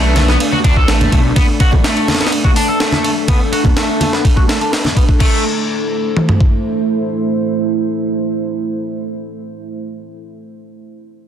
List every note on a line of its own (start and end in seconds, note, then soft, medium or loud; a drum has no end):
0.00 0.37 B1 loud
0.00 0.27 A3 medium
0.00 5.16 A3 medium
0.00 5.17 D4 medium
0.00 1.33 B4 medium
0.16 snare medium
0.16 ride medium
0.16 high conga medium
0.28 0.38 B3 medium
0.28 snare soft
0.40 ride medium
0.52 0.58 F#4 loud
0.52 high conga medium
0.64 0.84 D2 medium
0.64 0.75 D4 medium
0.64 kick medium
0.64 ride medium
0.76 0.88 A4 medium
0.76 kick medium
0.88 1.08 A1 medium
0.88 1.10 A3 medium
0.88 snare loud
0.88 ride medium
1.01 ride soft
1.01 high conga loud
1.01 low conga medium
1.12 1.32 B1 medium
1.12 1.18 A3 medium
1.12 kick medium
1.12 ride medium
1.36 1.45 B3 medium
1.36 5.16 A4 medium
1.36 kick loud
1.36 ride medium
1.36 high conga medium
1.60 1.70 F#4 medium
1.60 kick medium
1.60 ride medium
1.72 kick medium
1.72 high conga medium
1.72 low conga loud
1.84 2.19 A3 medium
1.84 snare loud
1.84 ride medium
1.97 ride soft
2.08 snare medium
2.08 ride medium
2.08 high conga loud
2.15 snare medium
2.15 ride medium
2.20 2.30 B3 medium
2.20 snare medium
2.20 ride medium
2.27 snare medium
2.27 ride medium
2.32 ride medium
2.44 2.50 F#4 medium
2.44 kick medium
2.44 high conga medium
2.56 2.67 D4 medium
2.56 open hi-hat medium
2.69 2.80 A4 medium
2.80 3.03 A3 medium
2.80 snare loud
2.80 ride medium
2.92 snare soft
2.92 high conga medium
3.04 3.10 A3 medium
3.04 ride medium
3.28 3.38 B3 medium
3.28 kick loud
3.28 ride medium
3.28 high conga medium
3.52 3.62 F#4 medium
3.52 ride medium
3.64 kick medium
3.64 high conga medium
3.64 low conga medium
3.77 4.11 A3 medium
3.77 snare loud
3.77 ride medium
4.00 ride medium
4.00 high conga medium
4.13 4.22 B3 medium
4.13 snare soft
4.25 kick medium
4.25 ride medium
4.37 4.42 F#4 medium
4.37 kick medium
4.37 high conga medium
4.48 4.59 A3 medium
4.48 snare loud
4.48 ride medium
4.61 4.70 D4 medium
4.61 ride soft
4.72 4.78 B4 medium
4.72 snare loud
4.72 ride medium
4.84 snare soft
4.84 high conga medium
4.84 low conga medium
4.96 5.02 B3 medium
4.96 kick medium
4.96 ride medium
5.09 kick medium
5.20 5.43 A3 medium
5.20 9.71 A3 medium
5.20 9.71 E4 medium
5.20 9.72 C5 medium
5.20 kick loud
5.20 crash medium
6.17 mid tom medium
6.29 floor tom medium
6.41 kick medium